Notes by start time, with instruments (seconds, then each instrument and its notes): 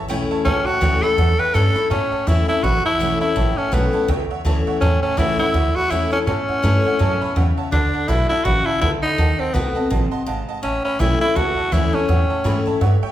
Already playing: steel-string acoustic guitar E2
0.08 upright bass B1, steel-string acoustic guitar E3 A3 C#4 E4, honky-tonk piano C#5 E5 G5
0.31 honky-tonk piano C#5 E5 A5
0.45 upright bass C#2, steel-string acoustic guitar A2, tenor saxophone C#4, honky-tonk piano C#5 E5 A5
0.66 tenor saxophone F#4, honky-tonk piano C#5 E5 A5, muted upright bass stroke
0.81 upright bass D2, steel-string acoustic guitar E3 A3 C#4 E4, honky-tonk piano C#5 E5 G5
1.02 steel-string acoustic guitar C#4 E4, tenor saxophone A4, honky-tonk piano C#5 E5 B5, muted upright bass stroke
1.18 upright bass E2, honky-tonk piano C#5 E5 F#5
1.39 tenor saxophone B4, honky-tonk piano C#5 E5 G5, muted upright bass stroke
1.54 upright bass G2, steel-string acoustic guitar E3 A3 C#4 E4, tenor saxophone A4, honky-tonk piano C#5 E5 A5
1.75 steel-string acoustic guitar C#4 E4, honky-tonk piano C#5 E5 B5, muted upright bass stroke
1.90 upright bass A2, steel-string acoustic guitar A2, tenor saxophone C#4, honky-tonk piano C#5 E5 A5
2.12 honky-tonk piano C#5 E5 A5, muted upright bass stroke
2.27 upright bass E2, steel-string acoustic guitar E3 A3 C#4 E4, tenor saxophone E4, honky-tonk piano C#5 E5 B5
2.48 steel-string acoustic guitar C#4 E4, tenor saxophone E4, honky-tonk piano C#5 E5 A5
2.63 upright bass A1, steel-string acoustic guitar E2, tenor saxophone F#4, honky-tonk piano C#5 E5 B5
2.85 tenor saxophone E4, honky-tonk piano C#5 E5 A5, muted upright bass stroke
3.00 upright bass B1, steel-string acoustic guitar E3 A3 C#4 E4, honky-tonk piano C#5 E5 F#5
3.21 steel-string acoustic guitar C#4 E4, tenor saxophone E4, honky-tonk piano C#5 E5 A5, muted upright bass stroke
3.36 upright bass A1, steel-string acoustic guitar A2, honky-tonk piano C#5 E5 A5
3.57 tenor saxophone C#4, honky-tonk piano C#5 E5 A5
3.72 upright bass B1, steel-string acoustic guitar E3 A3 C#4 E4, tenor saxophone B3, honky-tonk piano C#5 E5 A5
3.93 steel-string acoustic guitar C#4 E4, honky-tonk piano C#5 E5 A5, muted upright bass stroke
4.08 upright bass C#2, steel-string acoustic guitar E2, honky-tonk piano C#5 E5 G5
4.30 honky-tonk piano C#5 E5 F#5, muted upright bass stroke
4.45 upright bass D2, steel-string acoustic guitar E3 A3 C#4 E4, honky-tonk piano C#5 E5 A5
4.66 honky-tonk piano C#5 E5 F#5, muted upright bass stroke
4.81 upright bass E2, steel-string acoustic guitar A2, tenor saxophone C#4, honky-tonk piano C#5 E5 A5
5.03 tenor saxophone C#4, honky-tonk piano C#5 E5 A5, muted upright bass stroke
5.17 upright bass C#2, steel-string acoustic guitar E3 A3 C#4 E4, tenor saxophone E4, honky-tonk piano C#5 E5 F#5
5.39 steel-string acoustic guitar C#4 E4, tenor saxophone E4, honky-tonk piano C#5 E5 F#5, muted upright bass stroke
5.54 upright bass D2, steel-string acoustic guitar E2, honky-tonk piano C#5 E5 F#5
5.76 tenor saxophone F#4, honky-tonk piano C#5 E5 B5, muted upright bass stroke
5.90 upright bass E2, steel-string acoustic guitar E3 A3 C#4 E4, tenor saxophone E4, honky-tonk piano C#5 E5 F#5
6.11 tenor saxophone C#4, steel-string acoustic guitar C#4 E4, honky-tonk piano C#5 E5 A5, muted upright bass stroke
6.27 upright bass A2, steel-string acoustic guitar A2, tenor saxophone C#4, honky-tonk piano C#5 E5 A5
6.48 honky-tonk piano C#5 E5 F#5, muted upright bass stroke
6.62 upright bass G2, steel-string acoustic guitar E3 A3 C#4 E4, honky-tonk piano C#5 E5 A5
6.84 steel-string acoustic guitar C#4 E4, honky-tonk piano C#5 E5 F#5
6.99 upright bass F#2, steel-string acoustic guitar B2, honky-tonk piano C#5 E5 A5
7.21 honky-tonk piano C#5 E5 A5 B5, muted upright bass stroke
7.36 upright bass E2, steel-string acoustic guitar C#3, honky-tonk piano C#5 E5 F#5 G5
7.57 honky-tonk piano C#5 E5 F#5 A5, muted upright bass stroke
7.72 upright bass D2, steel-string acoustic guitar D3, tenor saxophone D4, honky-tonk piano D5 F#5 A5
7.94 honky-tonk piano D5 F#5 A5, muted upright bass stroke
8.08 upright bass B1, steel-string acoustic guitar D3 A3 D4 F#4, tenor saxophone E4, honky-tonk piano D5 F#5 B5
8.29 steel-string acoustic guitar D4 F#4, tenor saxophone E4, honky-tonk piano D5 F#5 A5
8.44 upright bass A1, steel-string acoustic guitar C#3, tenor saxophone F#4, honky-tonk piano D5 F#5 B5
8.66 tenor saxophone E4, honky-tonk piano D5 F#5 A5
8.81 upright bass C#2, steel-string acoustic guitar D3, tenor saxophone E4, honky-tonk piano D5 F#5 A5
9.03 tenor saxophone D#4, honky-tonk piano D5 F#5 B5, muted upright bass stroke
9.18 upright bass D#2, steel-string acoustic guitar D#3, honky-tonk piano D#5 F#5 A5
9.39 tenor saxophone C4, honky-tonk piano D#5 F#5 A5, muted upright bass stroke
9.54 upright bass C2, steel-string acoustic guitar D#3 A3 C4 F#4, tenor saxophone B3, honky-tonk piano D#5 F#5 A5
9.75 steel-string acoustic guitar C4 F#4, honky-tonk piano D#5 F#5 A5, muted upright bass stroke
9.90 upright bass A1, steel-string acoustic guitar C3, honky-tonk piano D#5 F#5 A5
10.11 honky-tonk piano D#5 F#5 A5 C6, muted upright bass stroke
10.26 upright bass G#1, steel-string acoustic guitar G#2, honky-tonk piano D#5 F5 F#5 A5
10.48 honky-tonk piano D#5 F#5 A5, muted upright bass stroke
10.63 upright bass A1, steel-string acoustic guitar A2, tenor saxophone C#4, honky-tonk piano C#5 E5 A5
10.85 tenor saxophone C#4, honky-tonk piano C#5 E5 B5
10.99 upright bass B1, steel-string acoustic guitar E3 A3 C#4 E4, tenor saxophone E4, honky-tonk piano C#5 E5 G5
11.21 steel-string acoustic guitar C#4 E4, tenor saxophone E4, honky-tonk piano C#5 E5 B5, muted upright bass stroke
11.35 upright bass C#2, steel-string acoustic guitar E2, tenor saxophone F#4, honky-tonk piano C#5 E5 A5
11.56 honky-tonk piano C#5 E5 A5, muted upright bass stroke
11.72 upright bass D2, steel-string acoustic guitar E3 A3 C#4 E4, tenor saxophone E4, honky-tonk piano C#5 E5 F#5
11.93 tenor saxophone C#4, steel-string acoustic guitar C#4 E4, honky-tonk piano C#5 E5 A5
12.08 upright bass E2, steel-string acoustic guitar A2, honky-tonk piano C#5 E5 F#5
12.30 honky-tonk piano C#5 E5 A5, muted upright bass stroke
12.44 upright bass G#2, steel-string acoustic guitar E3 A3 C#4 E4, honky-tonk piano C#5 E5 B5
12.65 steel-string acoustic guitar C#4 E4, honky-tonk piano C#5 E5 A5, muted upright bass stroke
12.81 upright bass G2, honky-tonk piano C#5 E5 F#5
13.02 honky-tonk piano C#5 E5 G5, muted upright bass stroke